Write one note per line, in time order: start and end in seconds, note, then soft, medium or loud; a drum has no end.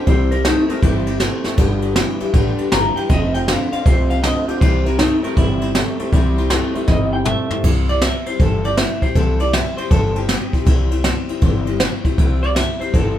0.06 0.51 C2 loud
0.06 0.31 C3 medium
0.06 0.42 C3 medium
0.06 0.32 E3 medium
0.06 0.32 G3 medium
0.06 0.43 G3 medium
0.06 0.32 C4 medium
0.06 0.31 E4 loud
0.06 0.31 C5 loud
0.06 0.30 C5 medium
0.06 kick loud
0.06 ride medium
0.31 0.43 G3 soft
0.31 0.44 C4 medium
0.31 0.45 E4 medium
0.31 0.44 A#4 medium
0.31 0.45 C5 medium
0.31 ride medium
0.44 0.67 C3 medium
0.44 0.69 G3 medium
0.44 0.67 A3 loud
0.44 0.69 C4 medium
0.44 0.69 D#4 medium
0.44 0.69 E4 medium
0.44 0.68 C5 medium
0.44 snare loud
0.44 ride loud
0.69 0.81 C3 medium
0.69 0.82 G3 soft
0.69 0.82 A3 medium
0.69 0.82 C4 medium
0.69 0.82 E4 medium
0.69 0.83 A#4 medium
0.69 0.82 C5 soft
0.69 muted upright bass stroke medium
0.69 ride medium
0.82 1.26 G1 medium
0.82 1.07 C3 medium
0.82 1.18 C3 medium
0.82 1.07 E3 medium
0.82 1.07 G3 medium
0.82 1.18 G3 loud
0.82 1.07 C4 medium
0.82 1.06 E4 medium
0.82 1.20 G4 loud
0.82 1.05 C5 medium
0.82 kick loud
0.82 ride medium
1.06 1.18 G3 soft
1.06 1.19 C4 soft
1.06 1.19 E4 medium
1.06 1.20 C5 medium
1.06 ride medium
1.19 1.43 C3 medium
1.19 1.44 G3 medium
1.19 1.43 A3 medium
1.19 1.44 C4 medium
1.19 1.43 E4 medium
1.19 1.42 C5 medium
1.19 snare loud
1.19 ride medium
1.43 1.57 C3 medium
1.43 1.56 G3 soft
1.43 1.57 A3 medium
1.43 1.58 C4 soft
1.43 1.58 E4 medium
1.43 1.58 C5 medium
1.43 muted upright bass stroke medium
1.43 snare medium
1.57 2.02 G1 loud
1.57 1.94 G2 medium
1.57 1.94 D3 loud
1.57 1.83 G3 medium
1.57 1.83 D4 medium
1.57 1.83 G4 medium
1.57 1.81 B4 loud
1.57 kick loud
1.57 ride medium
1.57 splash medium
1.82 1.95 D4 soft
1.82 1.96 G4 medium
1.82 1.96 B4 medium
1.82 ride medium
1.94 2.19 G2 medium
1.94 2.19 E3 loud
1.94 2.20 G3 medium
1.94 2.21 D4 medium
1.94 2.20 G4 medium
1.94 2.19 B4 medium
1.94 snare loud
1.94 ride medium
2.20 2.33 G2 medium
2.20 2.33 E3 medium
2.20 2.34 D4 soft
2.20 2.34 G4 medium
2.20 2.34 B4 medium
2.20 muted upright bass stroke medium
2.20 ride medium
2.34 2.55 A1 medium
2.34 2.69 G2 medium
2.34 2.70 D3 loud
2.34 2.59 G3 medium
2.34 2.59 D4 loud
2.34 2.59 G4 medium
2.34 2.57 B4 medium
2.34 kick loud
2.34 ride medium
2.58 2.71 D4 medium
2.58 2.72 G4 medium
2.58 2.72 B4 medium
2.58 ride medium
2.71 2.93 G1 medium
2.71 2.94 G2 medium
2.71 2.94 E3 medium
2.71 2.96 G3 medium
2.71 2.97 D4 medium
2.71 2.97 G4 medium
2.71 2.95 B4 medium
2.71 2.96 A#5 loud
2.71 snare loud
2.71 ride medium
2.96 3.09 G2 medium
2.96 3.09 E3 medium
2.96 3.09 D4 soft
2.96 3.10 G4 medium
2.96 3.10 B4 medium
2.96 3.09 G5 medium
2.96 muted upright bass stroke medium
2.96 ride medium
3.09 3.54 F1 loud
3.09 3.45 F2 medium
3.09 3.46 C3 loud
3.09 3.34 F3 medium
3.09 3.34 A3 medium
3.09 3.35 C4 medium
3.09 3.35 F4 medium
3.09 3.34 C5 loud
3.09 3.34 D#5 medium
3.09 kick loud
3.09 ride medium
3.34 3.47 C4 soft
3.34 3.48 F4 medium
3.34 3.48 C5 medium
3.34 3.48 G5 loud
3.34 ride medium
3.48 3.70 F2 loud
3.48 3.70 D3 loud
3.48 3.73 A3 medium
3.48 3.73 C4 medium
3.48 3.72 F4 medium
3.48 3.71 C5 medium
3.48 3.71 F5 medium
3.48 snare loud
3.48 ride medium
3.72 3.84 F2 medium
3.72 3.85 D3 medium
3.72 3.86 C4 soft
3.72 3.86 F4 soft
3.72 3.86 C5 medium
3.72 3.85 F5 medium
3.72 muted upright bass stroke medium
3.72 ride medium
3.85 4.30 C2 medium
3.85 4.21 F2 medium
3.85 4.21 C3 loud
3.85 4.11 F3 medium
3.85 4.11 A3 medium
3.85 4.11 C4 medium
3.85 4.10 F4 medium
3.85 4.10 C5 medium
3.85 4.09 C5 medium
3.85 kick loud
3.85 ride medium
4.10 4.23 C4 soft
4.10 4.24 F4 soft
4.10 4.23 C5 medium
4.10 4.22 F5 medium
4.10 ride medium
4.23 4.45 F2 medium
4.23 4.46 D3 medium
4.23 4.48 A3 medium
4.23 4.49 C4 medium
4.23 4.49 F4 medium
4.23 4.47 C5 medium
4.23 4.47 D#5 medium
4.23 snare loud
4.23 ride medium
4.48 4.60 F2 medium
4.48 4.60 D3 medium
4.48 4.61 C4 soft
4.48 4.62 F4 soft
4.48 4.61 G4 medium
4.48 4.61 C5 soft
4.48 muted upright bass stroke medium
4.48 ride medium
4.60 5.05 C2 loud
4.60 4.86 C3 medium
4.60 4.97 C3 medium
4.60 4.86 E3 medium
4.60 4.85 G3 medium
4.60 4.97 G3 medium
4.60 4.85 C4 medium
4.60 4.84 E4 medium
4.60 4.85 C5 medium
4.60 4.83 C5 medium
4.60 kick loud
4.60 ride medium
4.84 4.98 G3 soft
4.84 4.98 C4 medium
4.84 4.99 E4 medium
4.84 4.98 A#4 medium
4.84 4.99 C5 medium
4.84 ride medium
4.98 5.22 C3 medium
4.98 5.24 G3 medium
4.98 5.22 A3 medium
4.98 5.24 C4 medium
4.98 5.22 D#4 loud
4.98 5.22 E4 medium
4.98 5.22 C5 medium
4.98 snare loud
4.98 ride medium
5.23 5.35 C3 medium
5.23 5.36 G3 soft
5.23 5.36 A3 loud
5.23 5.36 C4 soft
5.23 5.36 E4 medium
5.23 5.37 A#4 loud
5.23 5.36 C5 medium
5.23 muted upright bass stroke medium
5.23 ride medium
5.36 5.81 G1 medium
5.36 5.61 C3 medium
5.36 5.72 C3 medium
5.36 5.62 E3 medium
5.36 5.62 G3 medium
5.36 5.72 G3 loud
5.36 5.61 C4 medium
5.36 5.73 E4 loud
5.36 5.60 E4 medium
5.36 5.59 C5 medium
5.36 kick loud
5.36 ride medium
5.61 5.74 G3 soft
5.61 5.74 C4 soft
5.61 5.75 E4 soft
5.61 5.74 C5 medium
5.61 ride medium
5.75 5.97 C3 medium
5.75 6.00 G3 medium
5.75 5.97 A3 loud
5.75 5.99 C4 medium
5.75 5.98 E4 medium
5.75 5.98 C5 medium
5.75 snare loud
5.75 ride medium
5.99 6.12 C3 medium
5.99 6.12 G3 medium
5.99 6.12 A3 medium
5.99 6.12 C4 medium
5.99 6.13 E4 medium
5.99 6.13 C5 medium
5.99 muted upright bass stroke medium
5.99 ride medium
6.12 6.56 C2 loud
6.12 6.37 C3 medium
6.12 6.48 C3 medium
6.12 6.37 E3 loud
6.12 6.38 G3 medium
6.12 6.48 G3 medium
6.12 6.37 C4 loud
6.12 6.37 E4 loud
6.12 6.35 C5 loud
6.12 kick loud
6.12 ride medium
6.37 6.48 G3 medium
6.37 6.50 C4 medium
6.37 6.50 E4 medium
6.37 6.50 C5 medium
6.37 ride medium
6.50 6.73 C3 loud
6.50 6.75 G3 medium
6.50 6.73 A3 loud
6.50 6.75 C4 medium
6.50 6.74 E4 medium
6.50 6.73 C5 medium
6.50 snare loud
6.50 ride loud
6.74 6.87 C3 medium
6.74 6.87 G3 medium
6.74 6.87 A3 loud
6.74 6.87 C4 medium
6.74 6.88 E4 medium
6.74 6.88 C5 medium
6.74 muted upright bass stroke medium
6.74 ride medium
6.88 7.32 G1 medium
6.88 7.13 C3 medium
6.88 7.24 C3 medium
6.88 7.13 E3 medium
6.88 7.13 G3 medium
6.88 7.24 G3 medium
6.88 7.13 C4 medium
6.88 7.12 E4 medium
6.88 7.11 C5 medium
6.88 7.12 D#5 medium
6.88 kick loud
6.88 snare medium
7.12 7.24 G3 soft
7.12 7.24 C4 medium
7.12 7.26 E4 soft
7.12 7.26 C5 medium
7.12 7.25 G5 loud
7.25 7.48 C3 medium
7.25 7.50 G3 medium
7.25 7.48 A3 loud
7.25 7.51 C4 medium
7.25 7.50 E4 medium
7.25 7.49 C5 medium
7.25 7.63 E5 loud
7.25 mid tom medium
7.50 7.63 C3 medium
7.50 7.64 G3 soft
7.50 7.63 A3 medium
7.50 7.64 C4 soft
7.50 7.64 E4 soft
7.50 7.64 C5 medium
7.50 muted upright bass stroke medium
7.50 floor tom medium
7.64 8.08 C2 loud
7.64 7.89 C3 medium
7.64 7.89 E3 medium
7.64 7.89 G3 medium
7.64 7.88 C4 medium
7.64 7.88 E4 medium
7.64 7.87 C5 medium
7.64 kick loud
7.64 crash loud
7.88 8.00 G3 soft
7.88 8.01 C4 soft
7.88 8.02 E4 medium
7.88 8.02 C5 soft
7.88 8.02 D5 loud
7.88 ride medium
8.01 8.26 G3 medium
8.01 8.27 C4 medium
8.01 8.27 E4 medium
8.01 8.26 C5 medium
8.01 8.26 E5 medium
8.01 snare loud
8.01 ride medium
8.26 8.40 G3 soft
8.26 8.40 C4 medium
8.26 8.40 E4 soft
8.26 8.40 C5 medium
8.26 muted upright bass stroke medium
8.26 ride medium
8.40 8.83 G1 medium
8.40 8.65 C3 medium
8.40 8.65 E3 medium
8.40 8.65 G3 medium
8.40 8.64 C4 medium
8.40 8.64 E4 medium
8.40 8.64 A4 medium
8.40 8.63 C5 medium
8.40 kick loud
8.40 ride medium
8.64 8.76 G3 soft
8.64 8.78 C4 soft
8.64 8.78 E4 medium
8.64 8.78 C5 medium
8.64 8.77 D5 medium
8.64 ride medium
8.77 9.02 G3 medium
8.77 9.02 C4 medium
8.77 9.01 E4 medium
8.77 9.00 C5 medium
8.77 9.01 E5 loud
8.77 snare loud
8.77 ride medium
9.02 9.14 G3 soft
9.02 9.14 C4 soft
9.02 9.15 E4 medium
9.02 9.15 C5 medium
9.02 kick medium
9.02 ride medium
9.15 9.59 C2 loud
9.15 9.40 C3 medium
9.15 9.40 E3 medium
9.15 9.40 G3 medium
9.15 9.40 C4 medium
9.15 9.39 E4 loud
9.15 9.39 A4 medium
9.15 9.39 C5 medium
9.15 kick loud
9.15 ride medium
9.40 9.52 G3 soft
9.40 9.52 C4 medium
9.40 9.54 E4 medium
9.40 9.53 C5 soft
9.40 9.53 D5 medium
9.40 ride medium
9.53 9.78 G3 medium
9.53 9.78 C4 medium
9.53 9.78 E4 medium
9.53 9.77 C5 medium
9.53 9.77 E5 medium
9.53 snare loud
9.53 ride loud
9.77 9.90 G3 medium
9.77 9.90 C4 soft
9.77 9.91 E4 medium
9.77 9.91 C5 medium
9.77 muted upright bass stroke medium
9.77 ride medium
9.90 10.35 G1 medium
9.90 10.15 C3 medium
9.90 10.16 E3 medium
9.90 10.16 G3 medium
9.90 10.16 C4 medium
9.90 10.15 E4 medium
9.90 10.16 A4 medium
9.90 10.14 C5 loud
9.90 kick loud
9.90 ride medium
10.15 10.27 G3 soft
10.15 10.28 C4 soft
10.15 10.29 E4 medium
10.15 10.90 G4 loud
10.15 10.29 C5 medium
10.15 ride medium
10.28 10.53 G3 medium
10.28 10.53 C4 medium
10.28 10.52 E4 medium
10.28 10.51 C5 medium
10.28 snare loud
10.28 ride medium
10.52 10.65 G3 soft
10.52 10.65 C4 soft
10.52 10.65 E4 soft
10.52 10.66 C5 medium
10.52 kick medium
10.52 ride medium
10.65 11.10 C2 medium
10.65 10.91 C3 loud
10.65 10.91 E3 medium
10.65 10.91 G3 loud
10.65 10.91 C4 loud
10.65 10.90 E4 loud
10.65 10.89 C5 loud
10.65 kick loud
10.65 ride medium
10.90 11.03 G3 soft
10.90 11.04 C4 medium
10.90 11.05 E4 medium
10.90 11.04 C5 medium
10.90 ride medium
11.04 11.29 G3 medium
11.04 11.29 C4 medium
11.04 11.28 E4 medium
11.04 11.27 C5 medium
11.04 snare loud
11.04 ride medium
11.29 11.41 G3 soft
11.29 11.41 C4 medium
11.29 11.42 E4 medium
11.29 11.42 C5 medium
11.29 muted upright bass stroke medium
11.29 ride medium
11.41 11.86 G1 medium
11.41 11.67 C3 medium
11.41 11.67 E3 medium
11.41 11.67 G3 loud
11.41 11.67 C4 medium
11.41 11.66 E4 loud
11.41 11.64 C5 loud
11.41 kick loud
11.41 ride medium
11.66 11.79 G3 medium
11.66 11.80 C4 medium
11.66 11.80 E4 medium
11.66 11.80 C5 medium
11.66 ride medium
11.80 12.05 G3 medium
11.80 12.05 C4 medium
11.80 12.04 E4 medium
11.80 12.03 C5 medium
11.80 snare loud
11.80 ride medium
12.04 12.17 G3 soft
12.04 12.18 C4 medium
12.04 12.18 E4 medium
12.04 12.18 C5 medium
12.04 muted upright bass stroke medium
12.04 kick medium
12.04 ride medium
12.18 12.62 C2 loud
12.18 12.43 C3 medium
12.18 12.43 E3 medium
12.18 12.43 G3 medium
12.18 12.43 C4 loud
12.18 12.42 E4 loud
12.18 12.41 C5 loud
12.18 kick loud
12.18 ride medium
12.42 12.55 G3 soft
12.42 12.55 C4 soft
12.42 12.56 E4 medium
12.42 12.56 C5 medium
12.42 12.55 D5 loud
12.42 ride medium
12.55 12.81 G3 medium
12.55 12.80 C4 medium
12.55 12.80 E4 medium
12.55 12.78 C5 medium
12.55 12.79 E5 loud
12.55 snare loud
12.55 ride medium
12.79 12.94 G3 soft
12.79 12.94 C4 medium
12.79 12.94 E4 medium
12.79 12.94 C5 medium
12.79 12.93 C5 medium
12.79 muted upright bass stroke medium
12.79 ride medium
12.93 13.19 G1 medium
12.93 13.18 C3 medium
12.93 13.19 E3 medium
12.93 13.19 G3 medium
12.93 13.19 C4 medium
12.93 13.18 E4 medium
12.93 13.18 A4 medium
12.93 13.17 C5 medium
12.93 kick loud
12.93 ride medium